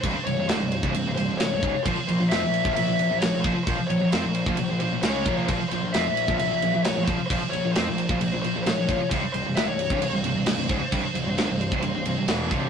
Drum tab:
CC |x-x-x-x-x-x-x-x-|x-x-x-x-x-x-x-x-|x-x-x-x-x-x-x-x-|x-x-x-x-x-x-x-x-|
SD |----o-------o---|----o-------o---|----o-------o---|----o-------o---|
BD |o------o------o-|o------o------o-|o------o------o-|o------o------o-|

CC |x-x-x-x-x-x-x-x-|x-x-x-x-x-x-x-x-|x-x-x-x-x-x-x-x-|
SD |----o-------o---|----o-------o---|----o-------o---|
BD |o------o------o-|o------o------o-|o------o------o-|